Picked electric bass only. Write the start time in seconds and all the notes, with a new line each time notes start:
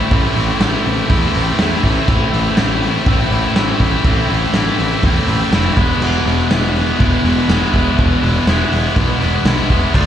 0.11 A1
0.36 A1
0.60 A1
0.86 A1
1.10 E2
1.36 A1
1.60 E2
1.84 A1
2.08 A1
2.33 A1
2.58 A1
3.06 A1
3.31 A1
3.56 A1
3.80 A1
4.05 A1
4.30 A1
4.54 A1
4.79 A1
5.03 E2
5.28 A1
5.52 F1
5.77 E1
6.02 E1
6.26 E1
6.51 E1
7.01 E1
7.24 E1
7.48 E1
7.74 E1
7.99 E1
8.22 E1
8.47 E1
8.72 E1
8.97 B1
9.21 E1
9.45 B1
9.70 E1
9.94 D2